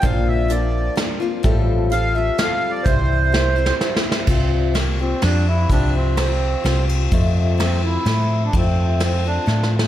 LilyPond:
<<
  \new Staff \with { instrumentName = "Upright piano" } { \time 3/4 \key c \mixolydian \tempo 4 = 127 <d' bes' c''>4 <d' bes' c''>4 <d' bes' d''>4 | <f' g' a'>4 <f' g' c''>4 <f' g' a'>4 | <e' g' c''>4 <e' g' bes'>4 <e' g' c''>4 | r2. |
r2. | r2. | r2. | }
  \new Staff \with { instrumentName = "Accordion" } { \time 3/4 \key c \mixolydian f''8 e''8 d''4 r4 | r4 f''8 e''8 f''8. d''16 | c''2 r4 | r4 bes8 c'8 d'8 e'8 |
d'8 c'2 r8 | r4 c'8 e'4~ e'16 d'16 | c'4 c'8 d'4 r8 | }
  \new Staff \with { instrumentName = "Steel-string acoustic guitar" } { \time 3/4 \key c \mixolydian <bes, d f bes c' f'>4 <f bes c' f'>4 <f bes c' f'>8 <f bes c' f'>8 | <a, f g c' f' a'>4 <g c' f' a'>8 <g c' f' a'>8 <g c' f' a'>4 | <c e g c' e' c''>4 <g c' e' c''>8 <g c' e' c''>8 <g c' e' c''>4 | <c f c' f' g'>4 <f c' f' g'>8 <c' f' g'>8 <f c' f' g'>4 |
<c f c' f' g'>4 <f c' f' g'>4 <f c' f' g'>4 | <f, c f a c' f'>4 <f a c' f'>4 <f a c'>4 | <f, c f a c' f'>4 <f a c' f'>8 <f a c' f'>8 <f a c' f'>4 | }
  \new Staff \with { instrumentName = "Fingered electric bass" } { \clef bass \time 3/4 \key c \mixolydian bes,,2 r4 | a,,2 r4 | c,2 r4 | c,2 f,4 |
c,2 c,4 | f,2 a,4 | f,2 a,4 | }
  \new DrumStaff \with { instrumentName = "Drums" } \drummode { \time 3/4 <hh bd>4 hh4 <hh sn>4 | <hh bd>4 hh4 <hh sn>4 | <hh bd>4 \tuplet 3/2 { sn8 r8 sn8 sn8 sn8 sn8 } | <cymc bd>4 <cymr sn>4 <cymr sn>4 |
<bd cymr>4 <cymr sn>4 <cymr sn>8 cymr8 | <bd cymr>4 <cymr sn>4 <cymr sn>4 | <bd cymr>4 <cymr sn>4 \tuplet 3/2 { sn8 sn8 sn8 } | }
>>